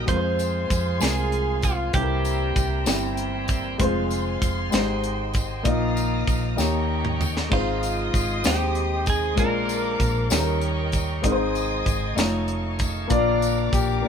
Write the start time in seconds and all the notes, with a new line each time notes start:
0.06 F2 C3 F3 G#3 C4 F4 G#4 A#4 C5 F5 G#5 C6, kick, closed hi-hat
0.11 C5
0.16 C5
0.39 closed hi-hat, tambourine
0.70 F2, kick, closed hi-hat, tambourine
0.99 C2 G#3 C4 F4 G#4 A#4, snare, closed hi-hat, tambourine
1.32 closed hi-hat
1.62 F4, kick, closed hi-hat, tambourine
1.92 C2 C3 E3 G3 A#3 C4 E4 G4 A4 C5 E5 G5 A#5, kick, closed hi-hat
2.02 A#4
2.25 closed hi-hat, tambourine
2.56 C2, kick, closed hi-hat, tambourine
2.85 G1 G3 C4 E4 G4, snare, closed hi-hat, tambourine
3.17 closed hi-hat
3.48 kick, closed hi-hat, tambourine
3.78 F1 C3 F3 G#3 C4 F4 C5 F5 G#5 C6, kick, closed hi-hat
4.10 closed hi-hat, tambourine
4.42 F1, kick, closed hi-hat, tambourine
4.71 G#1 G#2 D#3 G#3 C4 D#4 G4 C5 D#5 G5, snare, closed hi-hat, tambourine
5.04 closed hi-hat
5.34 kick, closed hi-hat, tambourine
5.63 A#1 A#2 D#3 F3 A#3 D#4 F4 A#4 D#5, kick, closed hi-hat
5.68 F5 A#5 D#6
5.97 closed hi-hat, tambourine
6.27 A#1, kick, closed hi-hat, tambourine
6.56 D#2 D#3 G3 A#3 C#4 D#4 G4 C#5 G5 C#6, snare, tambourine
7.05 mid tom
7.21 floor tom, tambourine
7.37 snare
7.49 G#1 G#2 C3 D#3 G#3 C4 D#4 F4 C5 C6 D#6, kick, splash
7.83 closed hi-hat, tambourine
8.14 G#1, kick, closed hi-hat, tambourine
8.43 D#2 G#3 C4 D#4 G4 C5, snare, closed hi-hat, tambourine
8.47 G4
8.75 closed hi-hat
9.06 G#4, kick, closed hi-hat, tambourine
9.35 A#1 A#2 F3 G#3 A#3 C#4 D4 F4 A#4 F5 A#5 D6, kick, closed hi-hat
9.39 D4 A#4
9.69 closed hi-hat, tambourine
10.00 A#1, kick, closed hi-hat, tambourine
10.30 D#2 D#3 G3 A#3 C#4 D#4 G4 A4 D#5 G5 A#5 C#6, snare, closed hi-hat, tambourine
10.40 A#4
10.61 closed hi-hat
10.92 kick, closed hi-hat, tambourine
11.22 G#1 G#2 C3 G#3 C4 D#4 G#4 A#4 D#5 G#5 C6 D#6, kick, closed hi-hat
11.32 C5
11.55 closed hi-hat, tambourine
11.86 G#1, kick, closed hi-hat, tambourine
12.15 F1 A3 C#4 D#4 F4 C#5 F5 C#6, snare, closed hi-hat, tambourine
12.48 closed hi-hat
12.79 kick, closed hi-hat, tambourine
13.08 A#1 A#2 D3 F3 A#3 D4 F4 A#4 D5 A#5 D6, kick, closed hi-hat
13.42 closed hi-hat, tambourine
13.73 A#1 G4, kick, closed hi-hat, tambourine
14.02 A#3 D4 F4 D5